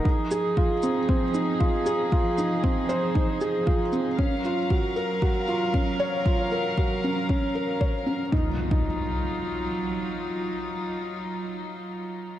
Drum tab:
SH |--x---x---x---x-|--x---x---x---x-|--x---x---x---x-|--x---x---x---x-|
BD |o---o---o---o---|o---o---o---o---|o---o---o---o---|o---o---o---o---|

SH |----------------|----------------|
BD |o--o------------|----------------|